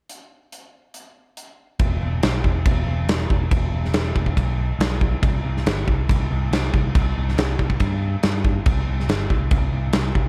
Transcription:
0.09 closed hi-hat
0.52 closed hi-hat
0.94 closed hi-hat
1.37 closed hi-hat
1.79 E1, kick, crash
2.01 E1
2.23 B1, snare, crash
2.44 E1, kick
2.65 E1, kick, crash
2.87 E1
3.07 E1, snare, crash
3.29 E1, kick
3.51 E1, kick, crash
3.72 E1
3.85 snare
3.93 E1, snare, crash
4.15 E1, kick
4.26 kick
4.37 B1, kick, crash
4.79 B1, snare, crash
5.01 kick
5.22 C2, kick, crash
5.45 C2
5.57 snare
5.66 G1, snare, crash
5.87 C2, kick
6.09 C2, kick, crash
6.31 C2
6.51 C2, snare, crash
6.73 C2, kick
6.95 C2, kick, crash
7.18 C2
7.29 snare
7.37 C2, snare, crash
7.59 C2, kick
7.70 kick
7.80 G2, kick, crash
8.23 G2, snare, crash
8.45 kick
8.66 C2, kick, crash
8.88 C2
9.00 snare
9.08 G1, snare, crash
9.30 C2, kick
9.51 C2, kick, crash
9.72 C2
9.93 C2, snare, crash
10.15 C2, kick

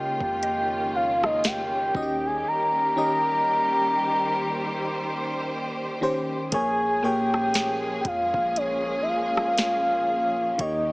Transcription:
Already playing: C#3 D#3 G#3 A#3 C#4 F4 D#5 G5
0.21 F2, kick
0.43 D#5, closed hi-hat
0.95 F5
1.24 D#5, cross-stick
1.44 G5, snare, closed hi-hat
1.94 D#2 D#3 G3 C#4 F#4 G4 D#5, kick
2.02 G4
2.26 G#5
2.48 A#5
2.96 D#3 C#4 G4 D#5
3.98 C5
6.01 D#3 C#4 G4 C5
6.52 A#1 A#2 F3 G#3 A#3 C#4 G#4 C#5 G#5, kick, closed hi-hat
7.02 A#2 A#3 G#4 C#5 G5
7.34 cross-stick
7.54 snare, closed hi-hat
8.01 F2 G5, kick, closed hi-hat
8.07 F5
8.34 A#1, kick
8.56 C#5, closed hi-hat
9.02 E5
9.08 F5
9.37 cross-stick
9.58 snare, closed hi-hat
10.58 D#2 D#3 A#3 G4 C#5 D#5, kick, closed hi-hat

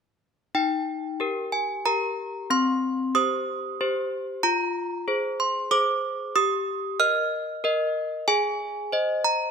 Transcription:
0.55 D#4 G5
1.20 G4 A#4
1.52 G#5
1.86 G4 A#4 A#5
2.50 C4 C6
3.15 G4 C5 D#6
3.81 G4 C5
4.43 F4 A#5
5.08 G#4 C5
5.40 C6
5.71 G#4 C5 D6
6.36 G4 D#6
7.00 A#4 D#5 F6
7.64 A#4 D#5
8.28 G#4 G#5
8.92 C5 D#5
9.24 A#5

